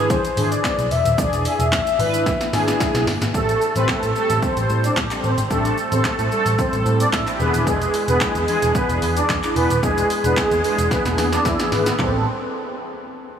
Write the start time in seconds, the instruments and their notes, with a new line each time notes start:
Already playing: picked electric bass G#1, analog polysynth E3 D4 G#4
0.10 soft synth lead C5, kick, closed hi-hat, shaker
0.25 closed hi-hat, shaker
0.37 picked electric bass G#1, analog polysynth E3 D4 G#4, open hi-hat, shaker
0.52 soft synth lead D5, closed hi-hat, shaker
0.64 kick, snare, clap, closed hi-hat, shaker
0.78 picked electric bass B1, closed hi-hat, shaker
0.91 picked electric bass E1, soft synth lead E5, open hi-hat, shaker
1.05 picked electric bass D#1, closed hi-hat, shaker
1.18 analog polysynth E3 D4 G#4, soft synth lead D5, kick, closed hi-hat, shaker
1.33 closed hi-hat, shaker
1.45 soft synth lead E5, open hi-hat, shaker
1.59 picked electric bass E1, closed hi-hat, shaker
1.72 kick, snare, clap, closed hi-hat, shaker
1.87 closed hi-hat, shaker
1.99 picked electric bass G#1, analog polysynth E3 D4 B4, open hi-hat, shaker
2.14 closed hi-hat, shaker
2.26 kick, snare, closed hi-hat, shaker
2.41 snare, closed hi-hat, shaker
2.53 picked electric bass G#1, analog polysynth E3 D4 G#4, snare, open hi-hat, shaker
2.68 snare, closed hi-hat, shaker
2.80 kick, snare, closed hi-hat, shaker
2.94 picked electric bass B1, snare, closed hi-hat, shaker
3.07 picked electric bass G1, snare, open hi-hat, shaker
3.22 picked electric bass G#1, snare, closed hi-hat, shaker
3.34 picked electric bass A1, analog polysynth G3 C4 A4, supersaw synth A3 A4, kick, shaker
3.49 closed hi-hat, shaker
3.61 shaker
3.75 picked electric bass A1, analog polysynth G3 C4 B4, supersaw synth C4 C5, closed hi-hat, shaker
3.88 supersaw synth A3 A4, kick, snare, clap, shaker
4.03 picked electric bass A2, closed hi-hat, shaker
4.15 analog polysynth G3 C4 A4, supersaw synth A3 A4, shaker
4.30 picked electric bass A1, closed hi-hat, shaker
4.42 supersaw synth C4 C5, kick, shaker
4.56 picked electric bass A1, analog polysynth G3 C4 C5, closed hi-hat, shaker
4.70 picked electric bass A2, shaker
4.84 supersaw synth D4 D5, closed hi-hat, shaker
4.97 picked electric bass A2, kick, snare, clap, shaker
5.11 analog polysynth G3 C4 A4, clap, closed hi-hat, shaker
5.24 picked electric bass A1, supersaw synth C4 C5, shaker
5.38 picked electric bass G#1, closed hi-hat, shaker
5.50 picked electric bass A1, analog polysynth G3 C4 D4, supersaw synth A3 A4, kick, shaker
5.65 closed hi-hat, shaker
5.78 shaker
5.92 picked electric bass A1, analog polysynth G3 C4 A4, supersaw synth C4 C5, closed hi-hat, shaker
6.04 supersaw synth A3 A4, kick, snare, clap, shaker
6.19 picked electric bass A2, closed hi-hat, shaker
6.31 analog polysynth G3 C4 A4, supersaw synth A3 A4, shaker
6.46 picked electric bass A1, closed hi-hat, shaker
6.59 supersaw synth C4 C5, kick, shaker
6.73 picked electric bass A1, analog polysynth G3 C4 A4, closed hi-hat, shaker
6.85 picked electric bass A2, shaker
7.00 supersaw synth D4 D5, closed hi-hat, shaker
7.13 picked electric bass A2, supersaw synth E4 E5, kick, snare, clap, shaker
7.27 analog polysynth G3 C4 G4, clap, closed hi-hat, shaker
7.40 picked electric bass E1, analog polysynth E3 D4 G#4, supersaw synth B3 B4, shaker
7.54 picked electric bass D#1, closed hi-hat, shaker
7.67 picked electric bass E1, supersaw synth G#3 G#4, kick, shaker
7.82 closed hi-hat, shaker
7.94 open hi-hat, shaker
8.08 picked electric bass E1, analog polysynth E3 D4 G#4, supersaw synth B3 B4, closed hi-hat, shaker
8.21 supersaw synth G#3 G#4, kick, snare, clap, shaker
8.35 picked electric bass E2, closed hi-hat, shaker
8.48 analog polysynth E3 D4 G#4, supersaw synth G#3 G#4, open hi-hat, shaker
8.62 picked electric bass E1, closed hi-hat, shaker
8.75 supersaw synth B3 B4, kick, shaker
8.89 picked electric bass E1, analog polysynth E3 D4 G#4, closed hi-hat, shaker
9.02 picked electric bass E2, open hi-hat, shaker
9.16 supersaw synth D4 D5, closed hi-hat, shaker
9.29 picked electric bass E2, kick, snare, clap, shaker
9.43 analog polysynth E3 D4 G#4, clap, closed hi-hat, shaker
9.55 picked electric bass E1, supersaw synth B3 B4, open hi-hat, shaker
9.70 picked electric bass D#1, closed hi-hat, shaker
9.83 analog polysynth E3 D4 G#4, supersaw synth G#3 G#4, kick, shaker
9.98 closed hi-hat, shaker
10.10 open hi-hat, shaker
10.24 picked electric bass E1, analog polysynth E3 D4 G#4, supersaw synth B3 B4, closed hi-hat, shaker
10.37 supersaw synth G#3 G#4, kick, snare, clap, shaker
10.51 picked electric bass E2, closed hi-hat, shaker
10.64 analog polysynth E3 D4 G#4, supersaw synth G#3 G#4, open hi-hat, shaker
10.78 picked electric bass E1, closed hi-hat, shaker
10.91 supersaw synth B3 B4, kick, snare, shaker
11.05 picked electric bass E1, analog polysynth E3 D4 G#4, snare, closed hi-hat, shaker
11.18 picked electric bass E2, snare, open hi-hat, shaker
11.32 supersaw synth D4 D5, snare, closed hi-hat, shaker
11.45 picked electric bass E2, supersaw synth E4 E5, kick, snare, shaker
11.59 analog polysynth E3 D4 G#4, snare, closed hi-hat, shaker
11.72 picked electric bass G#1, supersaw synth B3 B4, snare, open hi-hat, shaker
11.86 snare, closed hi-hat, shaker
11.99 picked electric bass A1, analog polysynth G3 C4 A4, supersaw synth C4, kick, clap, floor tom